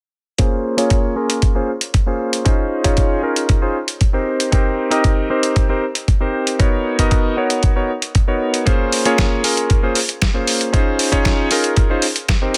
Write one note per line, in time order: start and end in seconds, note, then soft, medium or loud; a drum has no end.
0.38 0.75 A#3 medium
0.38 0.75 C#4 medium
0.38 0.75 F4 medium
0.38 0.75 G#4 medium
0.38 0.75 C5 medium
0.38 kick loud
0.38 closed hi-hat soft
0.77 1.13 A#3 medium
0.77 1.13 C#4 medium
0.77 1.13 F4 medium
0.77 1.13 G#4 medium
0.77 1.14 C#5 medium
0.77 closed hi-hat medium
0.90 kick loud
0.90 closed hi-hat soft
1.16 1.52 A#3 medium
1.16 1.52 C#4 medium
1.16 1.52 F4 medium
1.16 1.53 G#4 medium
1.16 1.53 A#4 medium
1.30 closed hi-hat medium
1.42 kick loud
1.42 closed hi-hat soft
1.55 1.69 A#3 medium
1.55 1.69 C#4 medium
1.55 1.69 F4 medium
1.55 1.69 G#4 medium
1.55 1.70 C5 medium
1.81 closed hi-hat medium
1.94 kick loud
1.94 closed hi-hat soft
2.06 2.42 A#3 medium
2.06 2.43 C#4 medium
2.06 2.43 F4 medium
2.06 2.43 G#4 medium
2.06 2.43 C5 medium
2.33 closed hi-hat medium
2.45 2.81 C#4 medium
2.45 2.81 D#4 medium
2.45 2.81 F4 medium
2.45 2.82 G#4 medium
2.45 2.82 C5 medium
2.45 kick loud
2.45 closed hi-hat soft
2.84 3.20 C#4 medium
2.84 3.20 D#4 medium
2.84 3.20 F4 medium
2.84 3.20 G#4 medium
2.84 3.20 C#5 medium
2.84 kick medium
2.84 closed hi-hat medium
2.97 kick loud
2.97 closed hi-hat soft
3.23 3.59 C#4 medium
3.23 3.59 D#4 medium
3.23 3.59 F4 medium
3.23 3.59 G#4 medium
3.23 3.60 A#4 medium
3.36 closed hi-hat medium
3.49 kick loud
3.49 closed hi-hat soft
3.61 3.76 C#4 medium
3.61 3.76 D#4 medium
3.61 3.76 F4 medium
3.61 3.76 G#4 medium
3.61 3.76 C5 medium
3.88 closed hi-hat medium
4.01 kick loud
4.01 closed hi-hat soft
4.13 4.49 C4 medium
4.13 4.49 D#4 medium
4.13 4.50 G4 medium
4.13 4.50 A#4 medium
4.13 4.50 C5 medium
4.40 closed hi-hat medium
4.52 4.88 C4 medium
4.52 4.88 D#4 medium
4.52 4.89 G4 medium
4.52 4.89 A#4 medium
4.52 4.89 C5 medium
4.52 kick loud
4.52 closed hi-hat soft
4.90 5.27 C4 medium
4.90 5.27 D#4 medium
4.90 5.27 G4 medium
4.90 5.27 A#4 medium
4.90 5.27 D#5 loud
4.90 closed hi-hat medium
5.04 kick loud
5.04 closed hi-hat soft
5.30 5.66 C4 medium
5.30 5.66 D#4 medium
5.30 5.66 G4 medium
5.30 5.66 A#4 medium
5.30 5.67 C5 medium
5.43 closed hi-hat medium
5.56 kick loud
5.56 closed hi-hat soft
5.69 5.83 C4 medium
5.69 5.83 D#4 medium
5.69 5.83 G4 medium
5.69 5.83 A#4 medium
5.69 5.84 C5 medium
5.95 closed hi-hat medium
6.08 kick loud
6.08 closed hi-hat soft
6.20 6.56 C4 medium
6.20 6.56 D#4 medium
6.20 6.56 G4 medium
6.20 6.56 A#4 medium
6.20 6.57 C5 medium
6.47 closed hi-hat medium
6.59 6.95 B3 medium
6.59 6.95 D#4 medium
6.59 6.96 F#4 medium
6.59 6.96 A#4 medium
6.59 6.96 C#5 medium
6.59 kick loud
6.59 closed hi-hat soft
6.99 7.34 B3 medium
6.99 7.34 D#4 medium
6.99 7.34 F#4 medium
6.99 7.34 A#4 medium
6.99 7.35 D#5 loud
6.99 kick medium
6.99 closed hi-hat medium
7.11 kick loud
7.11 closed hi-hat soft
7.37 7.73 B3 medium
7.37 7.73 D#4 medium
7.37 7.73 F#4 medium
7.37 7.73 A#4 medium
7.37 7.74 C#5 medium
7.50 closed hi-hat medium
7.63 kick loud
7.63 closed hi-hat soft
7.76 7.90 B3 medium
7.76 7.90 D#4 medium
7.76 7.90 F#4 medium
7.76 7.90 A#4 medium
7.76 7.90 C#5 medium
8.02 closed hi-hat medium
8.15 kick loud
8.15 closed hi-hat soft
8.28 8.63 B3 medium
8.28 8.63 D#4 medium
8.28 8.63 F#4 medium
8.28 8.64 A#4 medium
8.28 8.64 C#5 medium
8.54 closed hi-hat medium
8.66 9.02 A#3 medium
8.66 9.02 C#4 medium
8.66 9.02 F4 medium
8.66 9.03 G#4 medium
8.66 9.03 C5 medium
8.66 kick loud
8.66 closed hi-hat soft
8.92 open hi-hat medium
9.05 9.41 A#3 medium
9.05 9.41 C#4 medium
9.05 9.41 F4 medium
9.05 9.41 G#4 medium
9.05 9.41 C#5 loud
9.05 closed hi-hat medium
9.18 kick loud
9.18 snare loud
9.18 closed hi-hat soft
9.44 9.80 A#3 medium
9.44 9.80 C#4 medium
9.44 9.80 F4 medium
9.44 9.80 G#4 medium
9.44 9.80 A#4 medium
9.44 open hi-hat loud
9.57 closed hi-hat medium
9.70 kick loud
9.70 closed hi-hat soft
9.83 9.97 A#3 medium
9.83 9.97 C#4 medium
9.83 9.97 F4 medium
9.83 9.97 G#4 medium
9.83 9.97 C5 medium
9.95 open hi-hat medium
10.09 closed hi-hat medium
10.22 kick loud
10.22 snare loud
10.22 closed hi-hat soft
10.34 10.70 A#3 medium
10.34 10.70 C#4 medium
10.34 10.70 F4 medium
10.34 10.70 G#4 medium
10.34 10.70 C5 medium
10.47 open hi-hat loud
10.61 closed hi-hat medium
10.73 11.09 C#4 medium
10.73 11.09 D#4 medium
10.73 11.09 F4 medium
10.73 11.10 G#4 medium
10.73 11.10 C5 medium
10.73 kick loud
10.73 closed hi-hat soft
10.99 open hi-hat medium
11.12 11.48 C#4 medium
11.12 11.48 D#4 medium
11.12 11.48 F4 medium
11.12 11.48 G#4 medium
11.12 11.48 C#5 loud
11.12 kick medium
11.12 closed hi-hat medium
11.25 kick loud
11.25 snare loud
11.25 closed hi-hat soft
11.51 11.87 C#4 medium
11.51 11.87 D#4 medium
11.51 11.87 F4 medium
11.51 11.87 G#4 medium
11.51 11.87 A#4 medium
11.51 open hi-hat medium
11.64 closed hi-hat medium
11.76 kick loud
11.76 closed hi-hat soft
11.90 12.04 C#4 medium
11.90 12.04 D#4 medium
11.90 12.04 F4 medium
11.90 12.04 G#4 medium
11.90 12.04 C5 medium
12.02 open hi-hat medium
12.16 closed hi-hat medium
12.29 kick loud
12.29 snare loud
12.29 closed hi-hat soft
12.42 12.57 C4 medium
12.42 12.57 D#4 medium
12.42 12.57 G4 medium
12.42 12.57 A#4 medium
12.42 12.57 C5 medium
12.54 open hi-hat medium